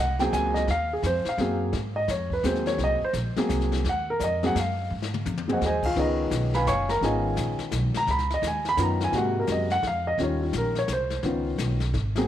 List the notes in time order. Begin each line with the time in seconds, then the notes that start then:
Already playing: C2
0.00 F#5
0.19 F#3 A#3 C4 G#4 G5, snare
0.33 C#2 G#5, kick, snare, hi-hat pedal
0.54 D#5, snare
0.68 D#2 F5, brush sweep, kick, snare
0.93 G#4
1.03 F2 C5, kick, snare, hi-hat pedal
1.25 F5, muted upright bass stroke, snare
1.38 F#2 F#3 A#3 C4 G#4, kick, snare
1.73 G#2, brush sweep, kick, snare
1.96 D#5
2.08 F2 C#5, kick, snare, hi-hat pedal
2.30 B4, kick
2.43 D#2 F#3 A#3 C4 G#4 C5, kick, snare, hi-hat pedal
2.55 snare
2.66 C#5, snare
2.78 C2, brush sweep, kick, snare
2.84 D#5
3.01 C5, muted upright bass stroke
3.13 A#1, kick, snare, hi-hat pedal
3.36 F#3 A#3 C4 G#4, muted upright bass stroke, snare
3.49 C2, kick, snare, hi-hat pedal
3.61 snare
3.72 snare
3.84 D#2, brush sweep, kick, snare
3.89 F#5
4.10 A#4
4.20 F2 D5, kick, snare, hi-hat pedal
4.24 D#5
4.43 F#3 A#3 C4 G#4 F#5, snare
4.55 F#2, kick, snare, hi-hat pedal
4.60 F5
4.90 G#2
5.02 snare
5.14 mid tom
5.25 F2, hi-hat pedal, high tom
5.38 high tom
5.48 F#3 A#3 C4 G#4, floor tom
5.52 F#4 C5 D#5 F#5
5.61 D#2, snare
5.65 G#4 C5 D#5 G#5
5.83 F4 F5, kick, crash
5.95 C#2 D#3 B3 C#4 F4, brush sweep, kick, snare
5.99 D#4 G#4 B4 D#5
6.31 B1, kick, snare, hi-hat pedal
6.54 B4 F5 G#5 B5, snare
6.66 F#1 C#5 F5 G#5 C#6, kick, snare, hi-hat pedal
6.89 A#4 A#5, snare
7.01 G#1 D#3 B3 C#4 F4 G#4 D#5 G#5, brush sweep, kick, snare
7.05 F5
7.36 A#1, kick, snare, hi-hat pedal
7.59 muted upright bass stroke, snare
7.71 B1, kick, snare, hi-hat pedal
7.94 A#5, muted upright bass stroke, snare
8.07 C#2, brush sweep, kick, snare
8.11 B5
8.19 snare
8.30 D#5, snare
8.42 D#2, kick, snare, hi-hat pedal
8.47 G#5
8.65 B5, snare
8.77 F#2 D#3 B3 C#4 F4, kick, snare, hi-hat pedal
8.82 A#5
9.00 G#5, snare
9.12 G#2 C3 G#3 A#3 F#4, brush sweep, kick, snare
9.18 F#5
9.39 A#4
9.47 F#2, kick, snare, hi-hat pedal
9.52 D#5
9.70 F#5, snare
9.83 F2, kick, snare
9.87 F5
10.07 D#5
10.18 D#2 D#3 G3 C#4 F4, brush sweep, kick, snare
10.23 C#5
10.43 F4
10.53 A#1, kick, snare, hi-hat pedal
10.58 A#4
10.75 C#5, snare
10.88 C2, kick, snare, hi-hat pedal
10.93 C5
11.10 snare
11.23 C#2 D#3 B3 C#4 F4, brush sweep, kick, snare
11.58 B1, kick, snare, hi-hat pedal
11.80 snare
11.93 G#1, kick, snare
12.16 F#3 A#3 C4 G#4, snare